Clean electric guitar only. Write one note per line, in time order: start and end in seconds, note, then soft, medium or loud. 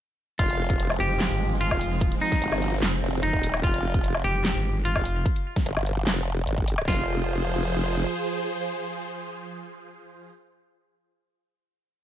0.39 0.92 F4 loud
1.00 1.53 G4 medium
1.61 2.14 F4 medium
2.21 2.75 D#4 loud
3.23 3.59 D#4 medium
3.63 4.16 F4 loud
4.24 4.77 G4 medium
4.85 5.26 F4 medium
6.88 10.31 F4 medium